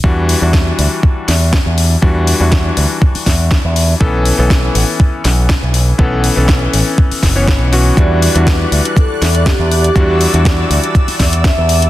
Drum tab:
HH |--o---o---o---o-|--o---o--oo---o-|--o---o---o---o-|--o---o--oo---o-|
SD |----o-----o-o---|----o-----o-o---|----o-----o-o---|----o-----o-o---|
BD |o---o---o---o---|o---o---o-o-o---|o---o---o---o---|o---o---o-o-o---|

HH |x-oxx-oxx-oxx-ox|x-oxx-oxxooxx-ox|
SD |----o-----o-o---|----o-----o-o---|
BD |o---o---o---o---|o---o---o-o-o---|